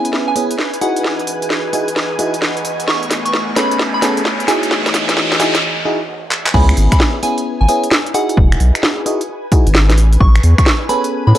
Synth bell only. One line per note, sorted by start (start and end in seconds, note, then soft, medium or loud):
0.00 0.14 G#5 medium
0.28 0.51 G#5 medium
0.81 1.06 F#5 medium
2.88 3.12 C#6 loud
3.25 3.49 C#6 medium
3.56 3.81 B5 medium
3.94 4.18 B5 medium
4.48 4.72 G#5 medium
6.54 6.78 B5 loud
6.92 7.16 B5 medium
7.23 7.47 G#5 medium
7.61 7.84 G#5 medium
8.14 8.39 F#5 medium
10.20 10.45 C#6 loud
10.58 10.82 C#6 loud
10.89 11.13 B5 loud
11.27 11.38 B5 loud